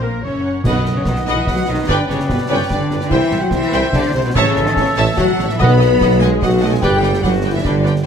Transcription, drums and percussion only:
0.65 concert bass drum medium
0.65 crash medium
0.85 snare medium
1.05 concert bass drum medium
1.05 snare medium
1.16 snare medium
1.26 snare medium
1.47 concert bass drum medium
1.47 snare medium
1.89 concert bass drum medium
1.89 snare medium
2.10 snare medium
2.20 snare medium
2.29 concert bass drum medium
2.29 snare medium
2.70 concert bass drum medium
2.70 snare medium
2.91 snare medium
3.01 snare medium
3.11 concert bass drum medium
3.11 crash soft
3.31 snare medium
3.51 concert bass drum medium
3.51 snare medium
3.62 snare medium
3.72 snare medium
3.93 concert bass drum medium
3.93 snare medium
4.35 concert bass drum medium
4.35 snare medium
4.56 snare medium
4.66 snare medium
4.77 concert bass drum medium
4.77 snare medium
5.18 concert bass drum medium
5.18 snare medium
5.39 snare medium
5.49 snare medium
5.61 concert bass drum medium
5.61 crash soft
5.81 snare medium
6.01 concert bass drum medium
6.01 snare medium
6.11 snare medium
6.22 snare medium
6.42 concert bass drum medium
6.42 snare medium
6.83 concert bass drum loud
6.83 snare medium
7.03 snare medium
7.14 snare medium
7.24 concert bass drum medium
7.24 snare medium
7.65 concert bass drum medium
7.65 snare medium
7.86 snare medium
7.96 snare medium

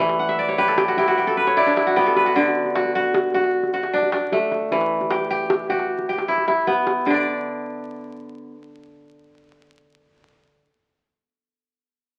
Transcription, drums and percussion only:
0.09 djembe slap medium
0.29 djembe tone medium
0.49 djembe bass medium
0.59 djembe slap soft
0.78 djembe slap medium
0.78 djembe tone medium
0.97 djembe bass medium
1.08 djembe slap medium
1.27 djembe tone medium
1.47 djembe slap medium
1.47 djembe bass medium
1.67 djembe slap soft
1.67 djembe tone medium
1.77 djembe slap medium
1.97 djembe bass medium
2.16 djembe slap medium
2.16 djembe tone medium
2.36 djembe slap soft
2.36 djembe bass medium
2.46 djembe slap soft
2.65 djembe tone medium
2.75 djembe slap medium
2.85 djembe bass medium
2.95 djembe slap soft
3.14 djembe slap medium
3.14 djembe tone medium
3.34 djembe bass medium
3.44 djembe slap medium
3.63 djembe tone medium
3.83 djembe slap medium
4.02 djembe slap soft
4.02 djembe tone medium
4.12 djembe slap medium
4.32 djembe bass medium
4.52 djembe tone medium
4.71 djembe slap soft
4.71 djembe bass medium
4.81 djembe slap medium
5.01 djembe tone medium
5.10 djembe slap medium
5.21 djembe bass medium
5.50 djembe slap medium
5.50 djembe tone medium
5.70 djembe bass medium
5.79 djembe slap soft
5.99 djembe slap soft
5.99 djembe tone medium
6.18 djembe slap medium
6.18 djembe bass medium
6.28 djembe slap soft
6.38 djembe slap soft
6.38 djembe tone medium
6.48 djembe slap medium
6.57 djembe slap soft
6.67 djembe bass medium
6.77 djembe slap soft
6.87 djembe slap medium
6.87 djembe tone medium
6.97 djembe slap soft
7.07 djembe bass medium

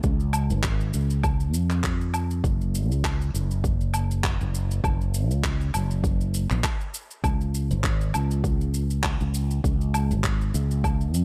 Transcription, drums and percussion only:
0.03 kick loud
0.03 shaker soft
0.20 shaker soft
0.33 low woodblock medium
0.33 shaker medium
0.50 shaker soft
0.63 kick loud
0.63 clap loud
0.63 shaker soft
0.81 shaker soft
0.94 shaker medium
1.10 shaker soft
1.24 kick loud
1.24 low woodblock medium
1.24 shaker soft
1.40 shaker soft
1.54 shaker medium
1.70 clap soft
1.70 shaker soft
1.84 kick loud
1.84 clap loud
1.84 shaker soft
2.01 shaker soft
2.14 low woodblock medium
2.14 shaker medium
2.31 shaker soft
2.44 kick loud
2.44 shaker soft
2.61 shaker soft
2.75 shaker medium
2.92 shaker soft
3.04 kick loud
3.04 clap medium
3.04 low woodblock medium
3.04 shaker soft
3.22 shaker soft
3.35 shaker medium
3.51 shaker soft
3.64 kick loud
3.64 shaker soft
3.81 shaker soft
3.94 low woodblock medium
3.94 shaker medium
4.11 shaker soft
4.24 kick loud
4.24 clap loud
4.24 shaker soft
4.41 shaker soft
4.55 shaker medium
4.71 shaker soft
4.84 kick loud
4.84 low woodblock medium
4.84 shaker soft
5.01 shaker soft
5.14 shaker medium
5.31 shaker soft
5.44 kick loud
5.44 clap medium
5.44 shaker soft
5.61 shaker soft
5.74 low woodblock medium
5.74 shaker medium
5.91 shaker soft
6.04 kick loud
6.04 shaker soft
6.21 shaker soft
6.34 shaker medium
6.50 clap soft
6.50 shaker soft
6.64 kick loud
6.64 clap loud
6.64 low woodblock medium
6.64 shaker soft
6.81 shaker soft
6.94 shaker medium
7.11 shaker soft
7.24 kick loud
7.24 low woodblock medium
7.24 shaker soft
7.41 shaker soft
7.55 shaker medium
7.71 shaker soft
7.84 kick loud
7.84 clap medium
7.84 shaker soft
8.01 shaker soft
8.14 low woodblock medium
8.14 shaker medium
8.31 shaker soft
8.44 kick loud
8.44 shaker soft
8.61 shaker soft
8.74 shaker medium
8.90 shaker soft
9.03 kick loud
9.03 clap loud
9.03 low woodblock medium
9.03 shaker soft
9.20 shaker soft
9.34 shaker medium
9.51 shaker soft
9.64 kick loud
9.64 shaker soft
9.81 shaker soft
9.94 low woodblock medium
9.94 shaker medium
10.11 shaker soft
10.24 kick loud
10.24 clap medium
10.24 shaker soft
10.41 shaker soft
10.55 shaker medium
10.71 shaker soft
10.84 kick loud
10.84 low woodblock medium
10.84 shaker soft
11.01 shaker soft
11.14 shaker medium

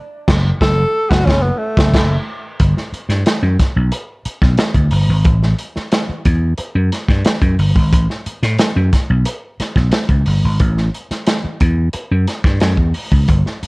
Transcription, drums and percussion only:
0.28 kick loud
0.28 snare loud
0.28 crash medium
0.61 kick medium
0.61 snare loud
1.11 kick loud
1.11 snare loud
1.27 kick loud
1.27 snare loud
1.77 kick loud
1.77 snare loud
1.94 kick loud
1.94 snare loud
1.94 crash medium
2.60 kick loud
2.60 closed hi-hat medium
2.77 snare soft
2.94 closed hi-hat medium
3.10 snare soft
3.10 closed hi-hat medium
3.26 snare medium
3.26 closed hi-hat medium
3.59 kick medium
3.59 snare soft
3.59 closed hi-hat medium
3.92 closed hi-hat medium
4.25 closed hi-hat medium
4.42 kick medium
4.42 snare soft
4.58 snare loud
4.58 closed hi-hat medium
4.75 kick medium
4.75 closed hi-hat soft
4.91 open hi-hat medium
5.25 kick loud
5.25 closed hi-hat medium
5.43 snare soft
5.59 closed hi-hat medium
5.76 snare soft
5.92 snare loud
5.92 closed hi-hat medium
6.25 kick medium
6.25 closed hi-hat medium
6.58 closed hi-hat medium
6.92 snare soft
6.92 closed hi-hat medium
7.08 kick medium
7.08 snare soft
7.25 snare loud
7.25 closed hi-hat medium
7.42 kick medium
7.42 closed hi-hat soft
7.59 open hi-hat medium
7.76 kick loud
7.93 kick loud
7.93 closed hi-hat medium
8.10 snare soft
8.26 closed hi-hat medium
8.43 snare soft
8.43 closed hi-hat medium
8.59 snare medium
8.59 closed hi-hat medium
8.93 kick medium
8.93 snare soft
8.93 closed hi-hat medium
9.25 closed hi-hat medium
9.60 snare soft
9.60 closed hi-hat medium
9.76 kick medium
9.76 snare soft
9.92 snare loud
9.92 closed hi-hat medium
10.09 kick medium
10.09 closed hi-hat soft
10.26 open hi-hat medium
10.60 kick loud
10.60 closed hi-hat medium
10.77 snare soft
10.94 closed hi-hat medium
11.11 snare soft
11.11 closed hi-hat medium
11.27 snare loud
11.27 closed hi-hat medium
11.60 kick medium
11.60 closed hi-hat medium
11.93 closed hi-hat medium
12.27 snare soft
12.27 closed hi-hat medium
12.44 kick medium
12.44 snare soft
12.60 snare loud
12.60 closed hi-hat medium
12.77 kick medium
12.94 open hi-hat medium
13.12 kick medium
13.28 kick loud
13.28 closed hi-hat medium
13.46 snare soft
13.63 closed hi-hat medium

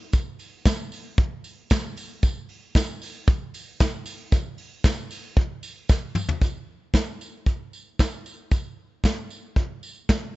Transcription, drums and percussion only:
0.13 kick loud
0.13 closed hi-hat medium
0.13 tambourine medium
0.39 open hi-hat soft
0.39 tambourine soft
0.66 kick loud
0.66 snare loud
0.66 closed hi-hat medium
0.66 tambourine loud
0.92 open hi-hat medium
0.92 tambourine medium
1.18 kick loud
1.18 closed hi-hat medium
1.44 open hi-hat soft
1.44 tambourine medium
1.70 kick loud
1.70 snare loud
1.70 closed hi-hat medium
1.70 tambourine medium
1.96 open hi-hat medium
1.96 tambourine medium
2.23 kick loud
2.23 closed hi-hat medium
2.23 tambourine medium
2.49 open hi-hat soft
2.75 kick loud
2.75 snare loud
2.75 closed hi-hat medium
2.75 tambourine loud
3.02 open hi-hat medium
3.02 tambourine medium
3.27 kick loud
3.27 closed hi-hat medium
3.27 tambourine soft
3.54 open hi-hat medium
3.54 tambourine medium
3.80 kick loud
3.80 snare loud
3.80 closed hi-hat medium
3.80 tambourine medium
4.06 open hi-hat medium
4.06 tambourine medium
4.32 kick loud
4.32 closed hi-hat medium
4.32 tambourine medium
4.58 open hi-hat soft
4.84 kick loud
4.84 snare loud
4.84 closed hi-hat medium
4.84 tambourine medium
5.11 open hi-hat medium
5.11 tambourine medium
5.37 kick loud
5.37 closed hi-hat medium
5.63 open hi-hat soft
5.63 tambourine medium
5.89 kick loud
5.89 snare medium
5.89 tambourine medium
6.15 mid tom medium
6.15 tambourine medium
6.29 floor tom loud
6.41 kick loud
6.41 closed hi-hat medium
6.41 tambourine medium
6.94 kick loud
6.94 snare medium
6.94 closed hi-hat medium
6.94 tambourine medium
7.21 tambourine medium
7.46 kick medium
7.46 closed hi-hat medium
7.46 tambourine soft
7.73 tambourine medium
7.99 kick loud
7.99 snare loud
7.99 closed hi-hat medium
7.99 tambourine medium
8.26 tambourine medium
8.51 kick loud
8.51 closed hi-hat medium
8.51 tambourine medium
9.04 kick medium
9.04 snare loud
9.04 closed hi-hat medium
9.04 tambourine medium
9.30 tambourine medium
9.56 kick loud
9.56 closed hi-hat medium
9.83 tambourine medium
10.09 kick loud
10.09 snare loud
10.09 closed hi-hat medium
10.09 tambourine medium

